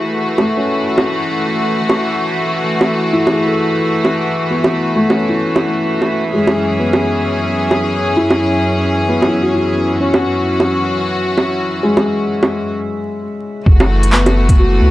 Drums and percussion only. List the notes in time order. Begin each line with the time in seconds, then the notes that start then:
0.38 low bongo
0.98 low bongo
1.89 low bongo
2.81 low bongo
3.27 low bongo
4.05 low bongo
4.64 low bongo
5.10 low bongo
5.56 low bongo
6.02 low bongo
6.47 low bongo
6.93 low bongo
7.71 low bongo
8.31 low bongo
9.22 low bongo
10.14 low bongo
10.60 low bongo
11.38 low bongo
11.97 low bongo
12.43 low bongo
13.66 kick
13.80 low bongo
14.03 closed hi-hat
14.12 clap
14.26 closed hi-hat, low bongo
14.49 kick, closed hi-hat